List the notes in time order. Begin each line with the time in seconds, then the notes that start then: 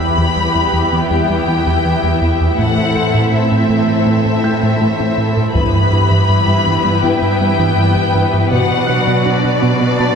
Already playing: E2 E3 B3 E4 G4 B4 E5 B5 E6
0.00 E2 E4
0.18 E2 E3
0.37 E2 G3
0.55 E2 G3
0.73 E2 E3
0.92 E3 B3
1.09 E2 E3 G3 E4 G5
1.29 E2 G3
1.48 E3 B3
1.67 E2 E3
1.85 E3 B3
2.03 E2 G3
2.22 E2 E3
2.40 E2 E4
2.57 A2 A3 C4 E4 A4 C5 F#5
2.78 A2
2.95 A2 A4
3.14 A2 A3
3.32 A2 C4 E5
3.51 A2 C4
3.69 A2 A3
3.88 A3 E4
4.06 A2 A3 C4 E4
4.25 A2 C4
4.44 A3 E4 G5 G6
4.63 A2 A3
4.81 A3 E4
4.99 A2 C4
5.18 A2 A3
5.37 A2 A4
5.54 G2 E3 B3 E4 G4 B4 E5 B5, taiko
5.73 G2
5.93 G2 E4
6.11 G2 E3
6.29 G2 G3
6.48 G2 G3
6.67 G2 E3
6.85 G3 B3
7.03 G2 E3 B3 E4 G5
7.22 G2 G3
7.41 G3 B3
7.59 G2 E3
7.78 G3 B3
7.96 G2 G3
8.15 G2 E3
8.33 G2 E4
8.50 B2 F#3 B3 D4 F#4 D5 F#5
8.71 B2
8.87 B2 B4 F#6
9.07 B2 B3
9.25 B2 D4 D5
9.43 B2 D4
9.62 B2 B3
9.80 B3 F#4
9.98 B2 B3 F#4 A5 A6